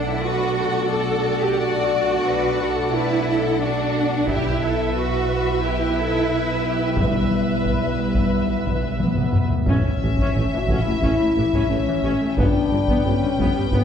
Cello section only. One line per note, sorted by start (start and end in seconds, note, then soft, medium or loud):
0.08 0.24 E4 medium
0.24 0.92 F#4 medium
0.91 1.41 A4 medium
1.43 1.59 G4 medium
1.58 2.94 F#4 medium
2.93 3.61 E4 medium
3.61 4.27 D4 medium
4.28 4.96 E4 medium
4.96 5.62 F#4 medium
5.63 6.98 E4 medium
6.98 8.97 G3 medium
9.69 9.75 A2 medium
10.03 10.09 A2 soft
10.19 10.25 A2 medium
10.36 10.42 A2 soft
10.54 10.60 A2 soft
10.69 10.76 A2 medium
10.87 10.93 A2 soft
11.03 11.10 A2 medium
11.20 11.27 A2 soft
11.37 11.43 A2 soft
11.54 11.61 A2 medium
11.71 11.78 A2 soft
11.87 11.93 A2 soft
12.03 12.10 A2 medium
12.22 12.28 A2 soft
12.37 12.44 G2 medium
12.71 12.78 G2 soft
12.88 12.95 G2 medium
13.05 13.12 G2 soft
13.22 13.29 G2 soft
13.38 13.45 G2 medium
13.56 13.62 G2 soft
13.73 13.79 G2 medium